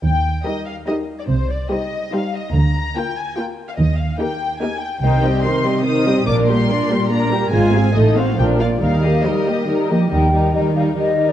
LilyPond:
<<
  \new Staff \with { instrumentName = "Violin section" } { \time 3/4 \key ees \major \tempo 4 = 143 g''4 ees''8 f''8 ees''8. d''16 | c''8 d''8 ees''4 f''8 ees''8 | bes''4 g''8 aes''8 g''8. f''16 | ees''8 f''8 g''4 aes''8 g''8 |
g''4 c'''4 ees'''4 | d'''8 c'''4. bes''4 | aes''4 ees''8 f''8 g''8 f''8 | f''4 ees''4. r8 |
bes'8 bes'8 bes'8 bes'8 bes'8 bes'8 | }
  \new Staff \with { instrumentName = "Flute" } { \time 3/4 \key ees \major r2. | r2. | r2. | r2. |
r2. | r2. | r2. | r2. |
g''4 ees''8 f''8 ees''8. d''16 | }
  \new Staff \with { instrumentName = "Violin section" } { \time 3/4 \key ees \major r4 <g' bes'>4 <g' bes'>4 | r4 <g' c''>4 <g' c''>4 | r4 <f' bes'>4 <f' bes'>4 | r4 <g' bes'>4 <g' bes'>4 |
<ees' c''>8 <g' ees''>8 <ees' c''>8 <g' ees''>8 <ees' c''>8 <g' ees''>8 | <bes' d''>8 <g' bes'>8 <bes' d''>8 <g' bes'>8 <bes' d''>8 <g' bes'>8 | <f' c''>8 <aes' f''>8 <a' ees''>8 <fis' c''>8 <d' bes'>8 <f' d''>8 | bes'8 <g' ees''>8 bes'8 <g' ees''>8 bes'8 <g' ees''>8 |
ees'8 ees'8 ees'8 ees'8 ees'8 ees'8 | }
  \new Staff \with { instrumentName = "Viola section" } { \time 3/4 \key ees \major r4 <g ees'>4 <g ees'>4 | r4 <g ees'>4 <g ees'>4 | r4 <bes f'>4 <bes f'>4 | r4 <bes ees'>4 <bes ees'>4 |
<ees ees'>8 <g c'>8 <ees ees'>8 <g c'>8 <ees ees'>8 <g c'>8 | <bes d'>8 <g bes>8 <bes d'>8 <g bes>8 <bes d'>8 <g bes>8 | <aes f'>8 <c' aes'>8 <a ees'>8 c'8 <f d'>8 <bes f'>8 | <g ees'>8 <bes g'>8 <g ees'>8 <bes g'>8 <g ees'>8 <bes g'>8 |
g8 g8 g8 g8 g8 g8 | }
  \new Staff \with { instrumentName = "Cello section" } { \clef bass \time 3/4 \key ees \major ees4 r2 | c4 r2 | d4 r2 | ees4 r2 |
c2. | bes,2. | aes,4 a,4 bes,4 | ees4 g4 ees8 f8 |
ees4 ees4 ees4 | }
  \new Staff \with { instrumentName = "Double bass section" } { \clef bass \time 3/4 \key ees \major ees,4 r2 | c,4 r2 | d,4 r2 | ees,4 r2 |
c,4 r2 | bes,,4 r2 | aes,,4 a,,4 bes,,4 | ees,4 r2 |
ees,4 r2 | }
>>